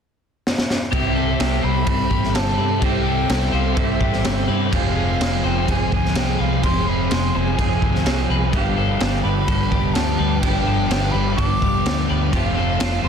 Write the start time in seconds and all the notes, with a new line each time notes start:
0.47 snare
0.58 snare
0.70 snare
0.91 C2 C3 G3 C4 E4 G4 A4 C5 E5, kick, crash
0.95 E5
1.14 C4 E4 G4 A4
1.19 G3
1.38 C2 C3 G3 C4 E4 G4, snare, crash
1.61 C2 C4 E4 G4 C5 B5
1.66 G3
1.85 C2 C3 G3 C4 E4 G4 A4, kick, crash
1.89 G3 C4
2.09 A1 G3 C4 E4 G4, kick
2.24 snare
2.33 G1 C3 G3 C4 E4 G4 A5, snare, crash
2.57 G2 G3 C4 E4 G4 B4
2.81 C2 C3 G3 C4 E4 G4, kick, crash
2.85 G5
3.05 G3 C4 E4 G4 A4
3.29 C2 C3 G3 C4 E4 G4, snare, crash
3.52 C2 G3 C4 E4 G4 C5 F5
3.76 C3 G3 C4 E4 G4 A4 E5, kick, crash
3.99 A1 G3 C4 E4 G4, kick
4.13 snare
4.24 G1 C3 G3 C4 E4 G4, snare, crash
4.48 G2 G3 C4 E4 G4 B4
4.71 F1 F2 C3 F3 G#3 C4 G4 G#4 F5, kick, crash
4.96 C3 F3 G#3 C4 G#4
5.00 F3
5.19 F1 F2 C3 F3 G#3 C4, snare, crash
5.23 G#4
5.42 F1 C3 F3 G#3 C4 G#4 C5 G5
5.47 F3
5.67 F1 F2 C3 F3 G#3 G#4, kick, crash
5.71 C4 G#4 G#5
5.91 D2 C3 F3 C4 G#4 G#5, kick
5.96 F3 G#3
6.05 snare
6.14 C2 F2 C3 F3 G#3 C4 G5, snare, crash
6.19 G#4
6.38 C2 C3 F3 G#3 C4 G#4 B4 F5
6.43 F3
6.62 F2 C3 F3 G#3 C4 G4 G#4 C6, kick, crash
6.87 C3 F3 G#3 C4 G#4 B5
7.10 F1 F2 C3 F3 G#3 C4 G#4 C6, snare, crash
7.34 F1 C3 F3 G#3 C4 G#4 C5 G#5
7.58 F1 F2 C3 F3 G#3 C4 G#4, kick, crash
7.81 D2 C3 F3 G#3 C4 G#4, kick
7.95 snare
8.05 C2 F2 C3 F3 G#3 C4 G#4, snare, crash
8.29 C2 C3 F3 G#3 C4 G#4 B4
8.52 G2 D3 F3 G3 G4 B4 F5 D6, kick, crash
8.56 B3 D4 G4
8.76 D3 F3 G3 B3 D4 G4 A4
8.99 G1 G2 D3 F3 G3 B3 D4 G4, snare, crash
9.23 G1 D3 G3 B3 D4 G4 B4 B5
9.27 F3
9.47 G2 D3 F3 G3 B3 D4 A4, kick, crash
9.51 G4
9.70 F1 D3 G3 B3 D4 G4, kick
9.75 F3
9.93 D2 G2 D3 F3 G3 B3 D4 G4 A5, snare, crash
10.19 D2 D3 F3 G3 B3 D4 G4 B4
10.40 G1 G2 D3 F3 G3 G4 G5 A5, kick, crash
10.44 B3 D4 G4
10.65 D3 G3 B3 D4 G4 A4
10.69 F3
10.90 G1 G2 D3 F3 G3 B3 D4 G4, snare, crash
11.11 G1 G3 G4 B4 B5
11.15 D3 F3 B3 D4
11.36 G1 G2 D3 F3 B3 D4 A4 D6, kick, crash
11.40 G3 G4
11.61 F1 D3 F3 G3 B3 D4 G4, kick
11.85 D2 G2 D3 F3 G3 B3 D4 G4, snare, crash
12.09 D2 D3 F3 G3 B3 D4 G4 B4
12.31 F1 F2 C3 F3 A3 C4 F4 G4 C5 F5, kick, crash
12.35 A5 E6
12.54 C3 F3 A3 C4 F4 A4
12.78 F1 F2 C3 F3 A3 C4 F4, snare, crash
13.02 F1 C3 F3 A3 C4 F4 C5 C6